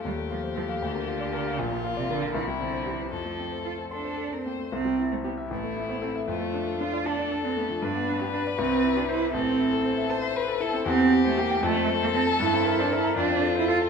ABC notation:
X:1
M:6/8
L:1/16
Q:3/8=78
K:F
V:1 name="Violin"
G12 | F6 E6 | A6 A3 B c2 | [K:C] z6 E6 |
F6 A6 | B12 | A6 c2 B2 A2 | [K:F] G6 A6- |
A6 F6 |]
V:2 name="Grand piano"
_E,, A, F c A f D,, B, F d B f | B,,, B, F d B f C,, G, C c G c | F,, A, C c A c c' c A c C A, | [K:C] C,, G, E c G e A,,, A, E c A e |
F,, A, D A D d a d A D A, F, | G,, B, D G B d C,, C E G c e | A,,, C E A c e a e c A E C | [K:F] E,, C G c G g F,, C A c A a |
G,, C B c B b F,, C A c A a |]
V:3 name="Cello"
G,2 F,2 F,2 D,6 | B,,3 C, D,2 E,2 D,2 E,2 | F,4 F2 D3 C B,2 | [K:C] C3 A, B,2 A,3 B, C2 |
A,4 F2 D3 C B,2 | D3 B, D2 C3 D E2 | C4 z8 | [K:F] C3 A, B,2 A,3 B, C2 |
E3 D E2 D3 E F2 |]